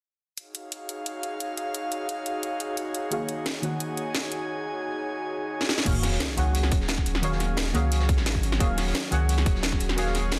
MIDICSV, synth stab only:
0, 0, Header, 1, 2, 480
1, 0, Start_track
1, 0, Key_signature, -6, "minor"
1, 0, Tempo, 342857
1, 525, Time_signature, 4, 2, 24, 8
1, 14549, End_track
2, 0, Start_track
2, 0, Title_t, "Synth stab"
2, 0, Program_c, 0, 62
2, 788, Control_c, 0, 64, 127
2, 4344, Note_on_c, 0, 51, 74
2, 4351, Note_on_c, 0, 58, 68
2, 4362, Note_on_c, 0, 66, 70
2, 4370, Note_on_c, 0, 68, 69
2, 4378, Note_on_c, 0, 73, 68
2, 4386, Note_on_c, 0, 77, 84
2, 5047, Note_off_c, 0, 51, 0
2, 5050, Note_off_c, 0, 58, 0
2, 5056, Note_off_c, 0, 66, 0
2, 5059, Note_off_c, 0, 68, 0
2, 5064, Note_off_c, 0, 73, 0
2, 5064, Note_on_c, 0, 51, 82
2, 5068, Note_off_c, 0, 77, 0
2, 5072, Note_on_c, 0, 58, 70
2, 5080, Note_on_c, 0, 66, 71
2, 5089, Note_on_c, 0, 68, 70
2, 5097, Note_on_c, 0, 73, 73
2, 5105, Note_on_c, 0, 78, 88
2, 6246, Note_off_c, 0, 51, 0
2, 6251, Note_off_c, 0, 58, 0
2, 6255, Note_off_c, 0, 66, 0
2, 6259, Note_off_c, 0, 68, 0
2, 6263, Note_off_c, 0, 73, 0
2, 6267, Note_off_c, 0, 78, 0
2, 8187, Note_on_c, 0, 51, 81
2, 8195, Note_on_c, 0, 58, 69
2, 8203, Note_on_c, 0, 66, 73
2, 8211, Note_on_c, 0, 68, 73
2, 8219, Note_on_c, 0, 73, 72
2, 8224, Control_c, 0, 64, 0
2, 8228, Note_on_c, 0, 77, 87
2, 8484, Control_c, 0, 64, 127
2, 8888, Note_off_c, 0, 51, 0
2, 8892, Note_off_c, 0, 58, 0
2, 8896, Note_off_c, 0, 66, 0
2, 8900, Note_off_c, 0, 68, 0
2, 8904, Note_off_c, 0, 73, 0
2, 8906, Note_on_c, 0, 51, 78
2, 8909, Note_off_c, 0, 77, 0
2, 8916, Note_on_c, 0, 58, 78
2, 8923, Note_on_c, 0, 66, 74
2, 8932, Note_on_c, 0, 68, 75
2, 8939, Note_on_c, 0, 73, 78
2, 8949, Note_on_c, 0, 78, 89
2, 10088, Note_off_c, 0, 51, 0
2, 10093, Note_off_c, 0, 58, 0
2, 10096, Note_off_c, 0, 66, 0
2, 10100, Note_off_c, 0, 68, 0
2, 10102, Note_on_c, 0, 51, 83
2, 10104, Note_off_c, 0, 73, 0
2, 10109, Note_off_c, 0, 78, 0
2, 10111, Note_on_c, 0, 58, 81
2, 10119, Note_on_c, 0, 66, 79
2, 10128, Note_on_c, 0, 68, 77
2, 10136, Note_on_c, 0, 73, 81
2, 10146, Note_on_c, 0, 77, 95
2, 10806, Note_off_c, 0, 51, 0
2, 10810, Note_off_c, 0, 58, 0
2, 10814, Note_off_c, 0, 66, 0
2, 10819, Note_off_c, 0, 68, 0
2, 10823, Note_off_c, 0, 73, 0
2, 10823, Note_on_c, 0, 51, 102
2, 10827, Note_off_c, 0, 77, 0
2, 10831, Note_on_c, 0, 58, 95
2, 10839, Note_on_c, 0, 66, 94
2, 10849, Note_on_c, 0, 68, 96
2, 10856, Note_on_c, 0, 73, 95
2, 10864, Note_on_c, 0, 77, 107
2, 12006, Note_off_c, 0, 51, 0
2, 12010, Note_off_c, 0, 58, 0
2, 12014, Note_off_c, 0, 66, 0
2, 12019, Note_off_c, 0, 68, 0
2, 12023, Note_off_c, 0, 73, 0
2, 12024, Note_on_c, 0, 51, 80
2, 12027, Note_off_c, 0, 77, 0
2, 12033, Note_on_c, 0, 58, 72
2, 12041, Note_on_c, 0, 66, 74
2, 12049, Note_on_c, 0, 68, 73
2, 12058, Note_on_c, 0, 73, 74
2, 12066, Note_on_c, 0, 77, 91
2, 12727, Note_off_c, 0, 51, 0
2, 12731, Note_off_c, 0, 58, 0
2, 12735, Note_off_c, 0, 66, 0
2, 12739, Note_off_c, 0, 68, 0
2, 12744, Note_off_c, 0, 73, 0
2, 12747, Note_on_c, 0, 51, 85
2, 12748, Note_off_c, 0, 77, 0
2, 12755, Note_on_c, 0, 58, 76
2, 12763, Note_on_c, 0, 66, 76
2, 12771, Note_on_c, 0, 68, 76
2, 12781, Note_on_c, 0, 73, 73
2, 12789, Note_on_c, 0, 78, 88
2, 13928, Note_off_c, 0, 51, 0
2, 13932, Note_off_c, 0, 58, 0
2, 13936, Note_off_c, 0, 66, 0
2, 13940, Note_off_c, 0, 68, 0
2, 13945, Note_off_c, 0, 73, 0
2, 13946, Note_on_c, 0, 51, 84
2, 13949, Note_off_c, 0, 78, 0
2, 13954, Note_on_c, 0, 58, 78
2, 13963, Note_on_c, 0, 66, 81
2, 13971, Note_on_c, 0, 68, 80
2, 13980, Note_on_c, 0, 73, 80
2, 13987, Note_on_c, 0, 77, 99
2, 14549, Note_off_c, 0, 51, 0
2, 14549, Note_off_c, 0, 58, 0
2, 14549, Note_off_c, 0, 66, 0
2, 14549, Note_off_c, 0, 68, 0
2, 14549, Note_off_c, 0, 73, 0
2, 14549, Note_off_c, 0, 77, 0
2, 14549, End_track
0, 0, End_of_file